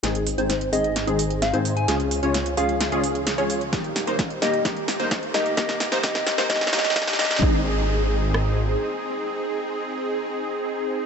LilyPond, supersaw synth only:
\new Staff \with { instrumentName = "Supersaw synth" } { \time 4/4 \key aes \major \tempo 4 = 130 <c' ees' aes'>8. <c' ees' c''>8. <c' ees' aes'>8. <c' ees' aes'>4 <c' ees' c''>8. | <des' f' aes'>8. <des' f' des''>8. <des' f' aes'>8. <des' f' aes'>4 <des' f' des''>8. | <bes ees' g'>8. <bes ees' c''>8. <bes ees' g'>8 <bes ees' g'>8. <bes ees' c''>8. <bes ees' g'>8 | <bes ees' g'>8. <bes ees' c''>16 <bes g'>8. <bes ees' c''>16 <bes ees' g'>8 <bes ees' g'>8 <bes ees' g'>8 <bes ees' g'>8 |
<c' ees' aes'>1~ | <c' ees' aes'>1 | }